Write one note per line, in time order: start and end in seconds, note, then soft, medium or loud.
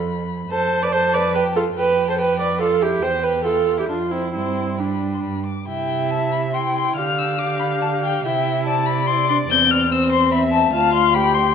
0.00 0.50 F2 soft
0.00 0.52 B5 medium
0.50 1.74 F2 soft
0.50 0.81 A4 medium
0.50 0.84 C5 medium
0.50 1.76 A5 medium
0.83 0.87 B4 medium
0.83 0.94 D5 medium
0.92 1.16 A4 medium
0.92 1.15 C5 medium
1.14 1.37 B4 medium
1.14 1.34 D5 medium
1.35 1.56 G4 medium
1.35 1.43 B4 medium
1.56 1.64 F4 soft
1.56 1.64 A4 medium
1.76 3.00 F2 soft
1.76 2.09 G4 medium
1.76 2.08 B4 medium
1.76 2.62 G5 medium
2.08 2.20 A4 medium
2.08 2.14 C5 medium
2.18 2.41 G4 medium
2.18 2.39 B4 medium
2.39 2.62 B4 medium
2.39 2.60 D5 medium
2.60 2.83 F4 medium
2.60 2.84 A4 medium
2.60 3.02 F5 soft
2.82 3.04 E4 medium
2.82 3.04 G4 medium
3.02 3.85 E2 soft
3.02 3.23 G4 medium
3.02 3.25 C5 medium
3.02 3.85 G5 medium
3.23 3.46 G4 medium
3.23 3.44 B4 medium
3.44 3.79 F4 soft
3.44 3.77 A4 medium
3.78 3.88 E4 soft
3.78 3.83 G4 medium
3.88 4.36 F2 soft
3.88 3.97 D4 soft
3.88 4.13 F4 medium
3.88 4.33 C6 soft
4.11 4.33 C4 soft
4.11 4.34 E4 medium
4.34 5.24 G2 soft
4.34 4.80 C4 soft
4.34 4.81 E4 medium
4.34 4.78 C6 soft
4.79 5.46 G3 soft
4.79 5.46 D4 soft
4.79 5.16 B5 soft
5.14 5.22 C6 soft
5.23 5.48 G2 soft
5.23 5.45 B5 soft
5.46 5.67 D6 soft
5.68 6.94 C3 medium
5.68 6.51 E4 soft
5.68 6.56 E5 medium
5.68 6.12 G5 medium
6.11 6.32 A5 medium
6.32 6.40 B5 medium
6.53 6.99 E4 soft
6.53 6.98 G5 medium
6.53 6.75 C6 medium
6.75 6.96 C6 medium
6.96 8.23 D3 soft
6.96 7.40 G4 medium
6.96 8.23 F5 medium
6.96 7.20 F6 medium
7.18 7.40 E6 medium
7.39 8.27 G4 medium
7.39 7.60 D6 medium
7.60 7.68 B5 medium
7.82 7.90 A5 medium
8.03 8.24 G5 medium
8.24 9.47 C3 medium
8.24 9.09 E4 medium
8.24 8.68 E5 medium
8.24 8.65 G5 medium
8.66 9.91 D5 medium
8.66 8.88 A5 medium
8.86 9.08 B5 medium
9.07 9.29 E4 medium
9.07 9.28 C6 loud
9.29 9.38 D4 medium
9.29 9.37 C6 loud
9.49 10.71 E2 medium
9.49 9.90 C4 medium
9.49 9.72 G6 loud
9.71 9.94 F6 loud
9.91 10.72 C4 medium
9.91 10.34 C5 medium
9.91 10.12 E6 loud
10.12 10.31 C6 loud
10.32 10.73 E5 medium
10.32 10.40 B5 medium
10.52 10.72 A5 medium
10.73 11.55 D2 medium
10.73 11.17 F4 medium
10.73 11.16 F5 medium
10.73 10.93 A5 loud
10.94 11.15 C6 loud
11.14 11.55 G4 medium
11.14 11.55 G5 medium
11.14 11.36 B5 loud
11.34 11.55 C6 medium